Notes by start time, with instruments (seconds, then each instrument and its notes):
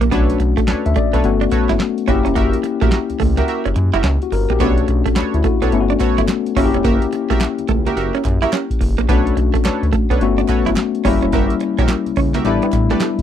0.01 analog synth bass A#1, clean electric guitar A#3, closed hi-hat
0.11 analog synth bass B1, tine electric piano A3 C#4 D4 F#4, clean electric guitar B3, analog polysynth D4 A4 B4 C#5, kick, closed hi-hat
0.30 closed hi-hat
0.40 analog synth bass B1, muted clean electric guitar stroke, closed hi-hat
0.57 clean electric guitar A3, kick, closed hi-hat
0.68 analog synth bass D2, analog polysynth D4 A4 B4 C#5, muted clean electric guitar stroke, snare, clap, closed hi-hat
0.86 analog synth bass D2, tine electric piano E5, closed hi-hat
0.96 clean electric guitar A3, tine electric piano D5, kick, closed hi-hat
1.13 analog synth bass B1, clean electric guitar B3, analog polysynth D4 A4 B4 C#5, tine electric piano A4, closed hi-hat
1.24 analog synth bass G1, tine electric piano A3 B3 C#4 F#4, closed hi-hat
1.41 clean electric guitar D4, closed hi-hat
1.51 analog polysynth F#4 A4 B4 C#5, muted clean electric guitar stroke, kick, closed hi-hat
1.69 analog synth bass G1, clean electric guitar E4, snare, closed hi-hat
1.80 muted clean electric guitar stroke, snare, clap, closed hi-hat
1.98 closed hi-hat
2.07 analog synth bass F#1, tine electric piano A#3 C#4 E4 G4, clean electric guitar C#4, analog polysynth F#4 G4 A#4 E5, kick, closed hi-hat
2.25 analog synth bass E1, clean electric guitar C#4, closed hi-hat
2.35 analog synth bass F#1, clean electric guitar A#3, analog polysynth F#4 G4 A#4 E5, kick, closed hi-hat
2.53 closed hi-hat
2.63 muted clean electric guitar stroke, closed hi-hat
2.81 analog synth bass A#1, clean electric guitar A3, analog polysynth F#4 G4 A#4 E5, kick, closed hi-hat
2.92 muted clean electric guitar stroke, snare, clap, closed hi-hat
3.10 analog synth bass C#2, closed hi-hat
3.20 analog synth bass C#2, clean electric guitar A3, kick, open hi-hat
3.37 clean electric guitar A#3, analog polysynth F#4 G4 A#4 E5, snare, closed hi-hat
3.48 analog polysynth F#4 G4 A#4 E5, closed hi-hat
3.65 analog synth bass F#1, clean electric guitar C#4, closed hi-hat
3.76 analog synth bass F#2, muted clean electric guitar stroke, closed hi-hat
3.93 analog synth bass F#1, clean electric guitar E4, analog polysynth F#4 G4 A#4 E5, snare, closed hi-hat
4.04 analog synth bass C#2, clean electric guitar C#4, snare, clap, closed hi-hat
4.22 tine electric piano F#4, closed hi-hat
4.32 analog synth bass G1, tine electric piano A#4, muted clean electric guitar stroke, open hi-hat
4.50 analog synth bass A#1, clean electric guitar A#3, tine electric piano G4, closed hi-hat
4.60 analog synth bass B1, tine electric piano A3 C#4 D4 F#4, clean electric guitar B3, analog polysynth D4 A4 B4 C#5, kick, closed hi-hat
4.78 closed hi-hat
4.88 analog synth bass B1, muted clean electric guitar stroke, closed hi-hat
5.06 clean electric guitar A3, kick, closed hi-hat
5.16 analog synth bass D2, analog polysynth D4 A4 B4 C#5, muted clean electric guitar stroke, snare, clap, closed hi-hat
5.34 analog synth bass D2, tine electric piano E4, closed hi-hat
5.44 clean electric guitar A3, tine electric piano F#4, kick, closed hi-hat
5.62 analog synth bass B1, clean electric guitar B3, analog polysynth D4 A4 B4 C#5, tine electric piano A4, closed hi-hat
5.72 analog synth bass G1, tine electric piano A3 B3 C#4 E4, closed hi-hat
5.80 tine electric piano F#4
5.90 clean electric guitar D4, closed hi-hat
6.00 analog polysynth F#4 A4 B4 C#5, muted clean electric guitar stroke, kick, clap, closed hi-hat
6.18 analog synth bass G1, clean electric guitar E4, snare, closed hi-hat
6.28 muted clean electric guitar stroke, snare, clap, closed hi-hat
6.46 closed hi-hat
6.56 analog synth bass F#1, tine electric piano A#3 C#4 E4 F#4, clean electric guitar C#4, analog polysynth F#4 G4 A#4 E5, kick, open hi-hat
6.65 tine electric piano G4
6.74 analog synth bass E1, clean electric guitar C#4, closed hi-hat
6.84 analog synth bass F#1, clean electric guitar A#3, analog polysynth F#4 G4 A#4 E5, kick, closed hi-hat
7.02 closed hi-hat
7.12 muted clean electric guitar stroke, closed hi-hat
7.30 analog synth bass A#1, clean electric guitar A3, analog polysynth F#4 G4 A#4 E5, kick, closed hi-hat
7.40 muted clean electric guitar stroke, snare, clap, closed hi-hat
7.58 analog synth bass C#2, closed hi-hat
7.68 analog synth bass C#2, clean electric guitar A3, kick, closed hi-hat
7.86 clean electric guitar A#3, analog polysynth F#4 G4 A#4 E5, closed hi-hat
7.96 analog synth bass F#1, analog polysynth F#4 G4 A#4 E5, closed hi-hat
8.15 clean electric guitar C#4, closed hi-hat
8.25 analog synth bass F#2, muted clean electric guitar stroke, kick, clap, closed hi-hat
8.42 clean electric guitar E4, analog polysynth F#4 G4 A#4 E5, snare, closed hi-hat
8.53 clean electric guitar C#4, snare, clap, closed hi-hat
8.70 kick, closed hi-hat
8.81 analog synth bass F#1, muted clean electric guitar stroke, kick, open hi-hat
8.98 analog synth bass A#1, clean electric guitar A#3, closed hi-hat
9.09 analog synth bass B1, tine electric piano A3 C#4 D4 F#4, clean electric guitar B3, analog polysynth D4 A4 B4 C#5, kick, closed hi-hat
9.27 closed hi-hat
9.37 analog synth bass B1, muted clean electric guitar stroke, closed hi-hat
9.54 clean electric guitar A3, kick, closed hi-hat
9.64 analog synth bass D2, analog polysynth D4 A4 B4 C#5, muted clean electric guitar stroke, snare, clap, closed hi-hat
9.83 analog synth bass D2, closed hi-hat
9.93 clean electric guitar A3, kick, closed hi-hat
10.10 analog synth bass B1, clean electric guitar B3, analog polysynth D4 A4 B4 C#5, closed hi-hat
10.21 analog synth bass G1, tine electric piano A3 B3 C#4 F#4, closed hi-hat
10.38 clean electric guitar D4, closed hi-hat
10.49 analog polysynth F#4 A4 B4 C#5, muted clean electric guitar stroke, kick, clap, closed hi-hat
10.66 analog synth bass G1, clean electric guitar E4, snare, closed hi-hat
10.77 muted clean electric guitar stroke, snare, clap, closed hi-hat
10.95 closed hi-hat
11.04 analog synth bass F#1, tine electric piano G3 A#3 C#4 E4, clean electric guitar C#4, analog polysynth F#4 G4 A#4 E5, kick, open hi-hat
11.22 analog synth bass E1, clean electric guitar C#4, closed hi-hat
11.33 analog synth bass F#1, clean electric guitar A#3, analog polysynth F#4 G4 A#4 E5, kick, closed hi-hat
11.50 closed hi-hat
11.60 muted clean electric guitar stroke, closed hi-hat
11.78 analog synth bass A#1, clean electric guitar C#4, analog polysynth F#4 G4 A#4 E5, kick, closed hi-hat
11.88 muted clean electric guitar stroke, snare, clap, closed hi-hat
12.06 analog synth bass C#2, closed hi-hat
12.16 analog synth bass C#2, clean electric guitar C#4, kick, open hi-hat
12.34 clean electric guitar A#3, analog polysynth F#4 G4 A#4 E5, snare, closed hi-hat
12.44 analog synth bass A1, tine electric piano G3 B3 D4 E4, analog polysynth G4 A4 B4 D5, closed hi-hat
12.62 clean electric guitar B3, closed hi-hat
12.73 analog synth bass A2, muted clean electric guitar stroke, kick, clap, closed hi-hat
12.90 clean electric guitar A3, analog polysynth G4 A4 B4 D5, snare, closed hi-hat
13.00 clean electric guitar G3, snare, clap, closed hi-hat
13.19 kick, closed hi-hat